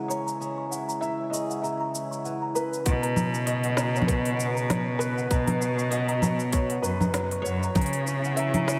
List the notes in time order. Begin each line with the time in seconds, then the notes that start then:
Already playing: C#3 E3 G#3 E4 G#4 C#5
0.08 C#4 C#5 A#5, cabasa
0.27 A#5, cabasa
0.40 C#3 G#4, cabasa
0.58 C#6
0.71 E4 F#5, cabasa
0.89 A#5, cabasa
1.01 E3 E5 A#5, cabasa
1.30 G#4 D#5 C#6, cabasa
1.50 F#5, cabasa
1.62 C#3 E5 A#5, cabasa
1.81 A#5
1.95 E4, cabasa
2.11 C#6, cabasa
2.25 E3 F#5, cabasa
2.42 A#5
2.55 C#4 B4 A#5, cabasa
2.73 cabasa
2.85 B2 F#5, kick, open hi-hat, cabasa
3.02 A#5, open hi-hat
3.16 C#4 A#5, low conga, cabasa
3.28 B3 F#4
3.34 cabasa
3.46 F#3 D#5 C#6, open hi-hat, cabasa
3.64 F#5, open hi-hat
3.77 B3 A#5, snare, cabasa
3.94 C#5 A#5, cabasa
4.02 low conga
4.07 B2 B4, kick, open hi-hat, cabasa
4.25 C#6, open hi-hat
4.37 C#4 F#5, cabasa
4.55 A#5, cabasa
4.68 F#3 A#5, snare, open hi-hat, low conga, cabasa
4.99 B4 C#6, cabasa
5.17 F#5, cabasa
5.31 B2 A#5, kick, open hi-hat, cabasa
5.47 A#5, open hi-hat, low conga
5.62 C#4, cabasa
5.78 C#6, cabasa
5.91 F#3 D#5 F#5, open hi-hat, cabasa
6.08 A#5, open hi-hat
6.22 B3 A#5, low conga, cabasa
6.40 cabasa
6.52 B2 C#5 C#6, kick, open hi-hat, cabasa
6.70 F#5, open hi-hat
6.82 F#2 C#4 B4 A#5, cabasa
7.01 A#5, low conga, cabasa
7.13 F#3, snare, open hi-hat, cabasa
7.31 C#6, open hi-hat
7.42 F#2 B4 C#5, cabasa
7.46 F#5
7.63 A#5, cabasa
7.75 C#3 E3 A#5, kick, open hi-hat, low conga, cabasa
7.81 open hi-hat
7.86 open hi-hat
7.93 C#4, open hi-hat
8.06 E4 C#6, cabasa
8.25 F#5, cabasa
8.36 E3 E5 A#5, open hi-hat, cabasa
8.54 A#5, open hi-hat, low conga
8.67 C#4, snare, cabasa